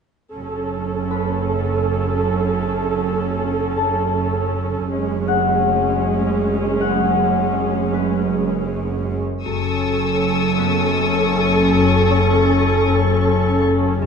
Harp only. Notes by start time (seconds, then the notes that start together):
1.10 B4 B5
3.77 A5
5.28 F#5
6.81 F#5
7.94 B4
10.58 B3 B4
12.10 C#5